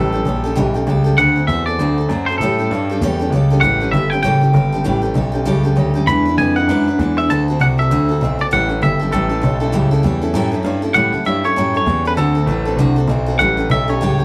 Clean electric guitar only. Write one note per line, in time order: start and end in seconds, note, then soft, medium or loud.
0.00 0.56 A4 medium
1.18 1.47 F#5 loud
1.47 1.65 E5 loud
1.66 2.29 D5 medium
2.26 2.37 C5 medium
2.38 2.96 A4 medium
3.61 3.91 F#5 loud
3.91 4.10 E5 medium
4.10 4.21 G5 loud
4.23 5.72 G5 loud
6.07 6.38 B5 loud
6.38 6.56 G#5 loud
6.56 7.18 F#5 loud
7.18 7.30 E5 loud
7.30 7.61 A5 loud
7.61 7.66 F#5 loud
7.79 8.41 E5 medium
8.41 8.46 D5 medium
8.53 8.82 F#5 medium
8.83 9.11 E5 medium
9.13 10.61 A4 medium
10.94 11.26 F#5 loud
11.26 11.45 E5 loud
11.45 11.76 C#5 loud
11.77 12.07 C#5 medium
12.07 12.12 B4 loud
12.17 12.74 A4 medium
13.39 13.71 F#5 loud
13.71 13.89 E5 loud
13.89 14.25 C#5 loud